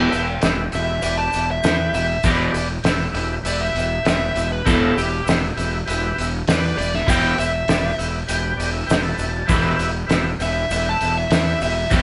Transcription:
Already playing: G4 B4 E5
0.12 E1, open hi-hat, shaker
0.42 E1 G4 B4 E5, snare, open hi-hat, shaker
0.72 E1 G4 B4 E5, open hi-hat, shaker
1.01 E1 G4 B4 D5 E5, open hi-hat, shaker
1.17 A5
1.33 E1, open hi-hat, shaker
1.51 E5
1.62 E2 G4 B4 G5, snare, open hi-hat, shaker
1.93 E1 E5, open hi-hat, shaker
2.23 E1 E2 B2 E3 G4 B4 D5, kick, open hi-hat, shaker
2.54 E1, open hi-hat, shaker
2.83 E1 G4 B4 E5, snare, open hi-hat, shaker
3.11 E1 G4 B4 E5, open hi-hat
3.43 E1 G4 B4 E5, open hi-hat, shaker
3.47 D5
3.61 E5
3.75 E1, open hi-hat, shaker
4.03 E1 G4 B4 E5, snare, open hi-hat
4.08 shaker
4.35 E1, open hi-hat, shaker
4.52 B4
4.64 E1 E2 B2 E3 G4 A4 B4 E5, kick, open hi-hat, shaker
4.97 E1 G4, open hi-hat, shaker
5.23 E1 G4 B4 E5
5.28 snare, open hi-hat, shaker
5.54 E1 G4 B4 E5, open hi-hat
5.59 shaker
5.86 E1 G4 B4 E5, open hi-hat
5.90 shaker
6.18 E1, open hi-hat, shaker
6.48 E2 G4 B4 D5, snare, open hi-hat, shaker
6.78 E1 D5, open hi-hat, shaker
6.94 E5, snare
7.07 E1 E2 B2 E3 G4 B4 G5, kick, open hi-hat, shaker
7.11 E5
7.38 E1 E5, open hi-hat, shaker
7.68 E1 G4 B4 D5, snare, open hi-hat, shaker
7.98 E1 G4 B4 E5, open hi-hat, shaker
8.27 E1 G4 B4 G5, open hi-hat, shaker
8.57 E1 D5, open hi-hat, shaker
8.73 E5
8.87 E1 G4 B4 E5 G5, open hi-hat, shaker
8.91 snare
9.04 A5
9.18 E1 A5, open hi-hat, shaker
9.46 E1 E2 B2 G4 B4 E5, kick, open hi-hat, shaker
9.50 E3
9.78 E1, open hi-hat, shaker
10.07 E1 G4 B4 E5, snare, open hi-hat, shaker
10.39 E1 G4 B4 E5, open hi-hat, shaker
10.69 E1 G4 B4 E5, open hi-hat, shaker
10.89 A5
11.01 E1, open hi-hat, shaker
11.17 E5
11.30 E2 G4 B4 E5, snare, open hi-hat, shaker
11.61 E1 E5, open hi-hat, shaker
11.90 E1 E2 B2 E3 G4 B4 E5, kick, open hi-hat, shaker

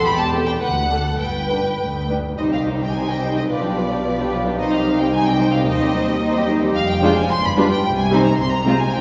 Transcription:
0.05 E1 E2 G4 B5
0.18 A5
0.33 C4 A4
0.46 G5
0.60 D2 B4 F#5
0.89 D4 A4
1.18 G1 G2 B4 G5
1.51 D4 B4
1.79 D2
2.09 D4 B4
2.38 C2 C3 G3 D#4 C5 D#5
2.52 D#3 C4 G4 D#5 F5
2.67 G3 D#4 C5
2.80 D#3 C4 G4 D#5 G5
2.94 G3 D#4 C5 G#5
3.07 D#3 C4 G4 D#5 G5
3.21 G3 D#4 C5
3.35 D#3 C4 G4 D#5
3.48 B1 B2 F3 F4 B4 D5
3.52 D5
3.62 G3 D4 G4 B4
3.76 F3 F4 B4 D5
3.90 G3 D4 G4 B4
4.05 F3 F4 B4 D5
4.18 G3 D4 G4 B4
4.31 F3 F4 B4 D5
4.44 G3 D4 G4 B4
4.58 C2 C3 D#3 D#4 C5 D#5
4.72 G3 C4 G4 D#5 F5
4.86 D#3 D#4 C5
5.00 G3 C4 G4 D#5 G5
5.13 D#3 D#4 C5 G#5
5.26 G3 C4 G4 D#5 G5
5.39 D#3 D#4 C5
5.53 G3 C4 G4 D#5 F5
5.67 D#2 D#3 D#4 C5 D#5
5.80 G3 C4 G4 D#5
5.94 D#3 D#4 C5
6.07 G3 C4 G4 D#5
6.20 D#3 D#4 C5
6.34 G3 C4 G4 D#5
6.48 D#3 D#4 C5
6.61 G3 C4 G4 D#5
6.75 F1 F2 F5
6.89 G5
7.02 G#3 D4 F4 C5
7.17 G#5
7.30 G1 G2 C6
7.44 B5
7.56 G3 D4 F4 B4
7.71 G5
7.83 C2 C3 G5
7.97 G#5
8.10 G3 C4 D#4 C5
8.25 A#5
8.37 C2 C3 C6
8.51 A#5
8.65 G#3 C4 F4 C5
8.79 G#5
8.92 C2 C3 G3 D#4 G4 C5 G5

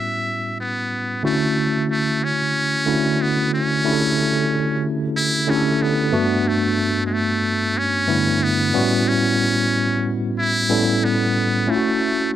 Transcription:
Already playing: A2 G3 B3 C#4 E4 F#4 E5
0.61 B3
1.23 D3 A3 C#4 E4 F#4
1.91 A3
2.24 C#4
2.86 D3 A3 C#4 E4 F#4
3.22 B3
3.54 C#4
3.84 D3 A3 C#4 E4 G4
3.92 A4
5.17 E4
5.47 D3 A3 C#4 E4 G4
5.55 A4
5.82 B3
6.12 G2 A3 B3 D4 F#4
6.47 A3
7.06 G#3
7.13 A3
7.78 C#4
8.07 G2 D3 A3 B3 E4
8.43 B3
8.73 A2 G3 B3 C#4 E4 F#4
9.08 C#4
10.38 E4
10.69 A2 G3 B3 C#4 E4 A4
11.04 B3
11.67 A3 C#4 E4 F4
11.75 F#4

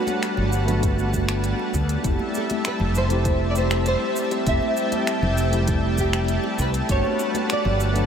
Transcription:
Already playing: G3 A3 B3 D4 F#4 B4 F#5 A5
0.07 closed hi-hat, high bongo, high conga, shaker
0.23 finger snap, closed hi-hat, shaker
0.37 G1, low conga
0.53 shaker
0.65 A3 B3 D4, closed hi-hat, low conga, shaker
0.70 F#4
0.83 kick, closed hi-hat, shaker
0.99 shaker
1.13 kick, shaker
1.29 finger snap, closed hi-hat, shaker
1.44 closed hi-hat, shaker
1.59 high bongo
1.74 D2, kick, shaker
1.89 closed hi-hat, shaker
2.02 F1 G3 A3 C4 E4 E5 A5, kick, closed hi-hat, shaker
2.07 G4
2.19 high bongo, high conga
2.35 A4, shaker
2.50 closed hi-hat, high bongo, high conga, shaker
2.65 B4, finger snap, closed hi-hat, shaker
2.80 F1, low conga
2.95 C5, shaker
3.08 A3 C4 E4, closed hi-hat, low conga, shaker
3.13 G4
3.25 kick, closed hi-hat, shaker
3.50 D5
3.56 C5, high conga, shaker
3.70 finger snap, closed hi-hat, high bongo, shaker
3.86 C5, closed hi-hat, shaker
4.16 shaker
4.31 closed hi-hat, high bongo, shaker
4.44 F1 A3 C4 E4 E5 G5, kick, closed hi-hat, shaker
4.49 G4
4.61 high bongo, high conga
4.77 shaker
4.92 closed hi-hat, high bongo, high conga, shaker
5.07 finger snap, closed hi-hat, shaker
5.22 F1, low conga
5.38 shaker
5.50 A3 C4 E4, closed hi-hat, low conga, shaker
5.55 G4
5.68 kick, closed hi-hat, shaker
5.98 G4, kick, shaker
6.13 finger snap, closed hi-hat, shaker
6.28 closed hi-hat, shaker
6.44 high bongo
6.59 C2 B4, kick, shaker
6.74 closed hi-hat, shaker
6.87 G1 A3 B3 D4 B4 F#5, kick, closed hi-hat, shaker
6.91 F#4 C#5
7.04 high bongo, high conga
7.19 shaker
7.34 closed hi-hat, high bongo, high conga, shaker
7.50 D5, finger snap, closed hi-hat, shaker
7.65 G1, low conga
7.80 shaker
7.92 A3 B3 D4, closed hi-hat, low conga, shaker
7.97 F#5

